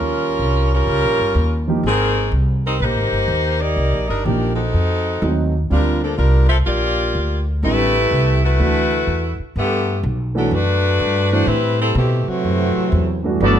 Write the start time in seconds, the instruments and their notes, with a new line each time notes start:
Already playing: upright bass D#2, saxophone section G3 C#4 F4 A#4
0.39 upright bass C2
0.73 saxophone section G3 C#4 F4 A#4
0.87 upright bass C#2
1.03 upright bass A#1
1.19 upright bass G1
1.35 upright bass D#2
1.68 grand piano F3 A#3 D#4 G4
1.83 upright bass G#1, saxophone section D#3 A#3 C4 G#4
2.32 upright bass C2
2.66 saxophone section G3 C4 D#4 A#4
2.78 upright bass A#1, saxophone section D#4 G4 B4
2.83 saxophone section A#3 C5
2.96 upright bass G#1
3.12 upright bass G1
3.28 upright bass D#2
3.60 saxophone section A#3 D#4 G4 D5
3.76 upright bass C2
3.93 upright bass A#1
4.08 upright bass G1, saxophone section G3 D4 D#4 A#4
4.24 upright bass A#1, saxophone section D#3 A#3 D4 G4, grand piano F3 A#3 D#4 G4
4.55 saxophone section C4 D#4 F#4 A4
4.74 upright bass F2
5.22 upright bass D#2, grand piano F#3 A3 C4 D#4
5.70 upright bass D2, grand piano D3 G3 C4 F4, saxophone section G3 D4 F4 A#4
6.02 saxophone section F3 A#3 D4 A4
6.17 upright bass C2, saxophone section G3 D4 F4 A#4
6.49 saxophone section C4 F4 A4 E5
6.65 upright bass A#1, saxophone section A#3 F4 G4 D5
7.15 upright bass D2
7.63 upright bass A1, grand piano D3 G3 C4 E4, saxophone section A3 E4 G4 B4
8.11 upright bass C2
8.44 saxophone section A3 E4 F#4 B4
8.59 upright bass D2, grand piano E3 A3 D4 F#4
9.07 upright bass E2
9.39 muted upright bass stroke
9.56 upright bass G2, saxophone section D3 A3 B3 G4
10.03 upright bass B1
10.35 grand piano E3 A3 D4 F#4, saxophone section F#3 B3 D4 A4
10.51 upright bass F#2, saxophone section A3 D4 F#4 B4
11.00 upright bass G2
11.31 grand piano E3 A3 D4 E4, saxophone section A3 D4 F#4 C5
11.47 upright bass A2, saxophone section G3 C4 E4 B4
11.79 saxophone section G3 C4 E4 A4
11.95 upright bass B2, saxophone section E3 A3 C4 G4
12.27 trombone section A2 C3 F#3, saxophone section E3 A3 C4 F#4, muted upright bass stroke
12.45 upright bass F#2
12.76 muted upright bass stroke
12.92 upright bass E2
13.24 grand piano G2 E3 A3 D4 F#4
13.40 upright bass G1, trombone section F#3 A3 B3 D4 F#4 A4, trumpet section B3 F#4 A4 D5